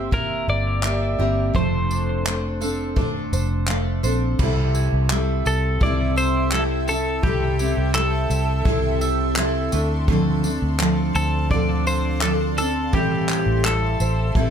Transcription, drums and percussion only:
0.12 kick
0.83 clap
1.55 kick
1.91 tambourine
2.27 clap
2.62 tambourine
2.97 kick
3.33 tambourine
3.68 clap
4.04 tambourine
4.39 kick, crash
4.75 tambourine
5.10 clap
5.46 tambourine
5.81 kick
6.17 tambourine
6.52 clap
6.88 tambourine
7.23 kick
7.59 tambourine
7.95 clap
8.31 tambourine
8.65 kick
9.01 tambourine
9.36 clap
9.72 tambourine
10.08 kick
10.44 tambourine
10.80 clap
11.15 tambourine
11.51 kick
11.87 tambourine
12.22 clap
12.58 tambourine
12.93 kick
13.29 clap, tambourine
13.65 clap
14.00 tambourine
14.35 kick

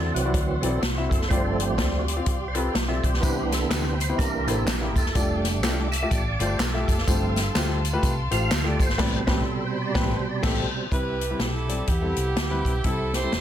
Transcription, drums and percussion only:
0.16 closed hi-hat
0.34 kick, closed hi-hat
0.63 closed hi-hat
0.83 snare, closed hi-hat
1.11 kick, closed hi-hat
1.21 snare
1.31 kick, closed hi-hat
1.60 closed hi-hat
1.78 kick, snare, closed hi-hat
2.08 closed hi-hat
2.26 kick, closed hi-hat
2.55 closed hi-hat
2.75 snare, closed hi-hat
3.04 kick, closed hi-hat
3.14 snare
3.23 kick, closed hi-hat, tambourine
3.52 snare, closed hi-hat, tambourine
3.71 snare, clap, closed hi-hat, tambourine
4.00 closed hi-hat, tambourine
4.19 kick, closed hi-hat, tambourine
4.48 closed hi-hat, tambourine
4.67 snare, clap, closed hi-hat, tambourine
4.96 kick, closed hi-hat, tambourine
5.06 snare
5.15 kick, closed hi-hat, tambourine
5.44 snare, closed hi-hat, tambourine
5.64 snare, clap, closed hi-hat, tambourine
5.92 closed hi-hat, tambourine
6.11 kick, closed hi-hat, tambourine
6.40 closed hi-hat, tambourine
6.60 snare, clap, closed hi-hat, tambourine
6.88 kick, closed hi-hat, tambourine
6.98 snare
7.08 kick, closed hi-hat, tambourine
7.36 snare, closed hi-hat, tambourine
7.55 snare, clap, closed hi-hat, tambourine
7.85 closed hi-hat, tambourine
8.03 kick, closed hi-hat, tambourine
8.31 closed hi-hat, tambourine
8.51 snare, clap, closed hi-hat, tambourine
8.80 kick, closed hi-hat, tambourine
8.89 snare
8.99 kick, snare, crash
9.27 kick, snare
9.95 kick, snare
10.43 kick, snare, crash
10.92 kick, closed hi-hat
11.21 closed hi-hat
11.40 snare, closed hi-hat
11.69 closed hi-hat
11.87 kick, closed hi-hat
12.16 closed hi-hat
12.36 snare, closed hi-hat
12.65 kick, closed hi-hat
12.84 kick, closed hi-hat
13.13 snare, closed hi-hat
13.32 snare, closed hi-hat

